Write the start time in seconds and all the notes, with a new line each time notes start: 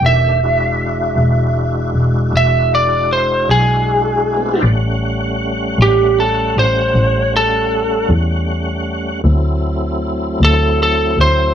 0.01 E1 D#3 A3 D4 G4
0.06 E5
0.43 G#3 D4 E4 F#4
1.17 E1
1.94 E1
2.33 E1
2.37 E5
2.75 D5
3.13 C5
3.48 B1 G#4
4.33 A3 B3
4.39 C4 D4
4.45 E4 F4
4.51 G4 A4
4.56 B4 C5
4.62 A1 G3 A3 C#4 D5 F#5
5.78 A1 G4
6.20 A4
6.56 A1 C5
6.94 A1
7.37 A4
8.09 E2
9.24 D2 F#3 A3 C4 E4
10.41 D2 A4
10.83 A4
11.17 D2 C5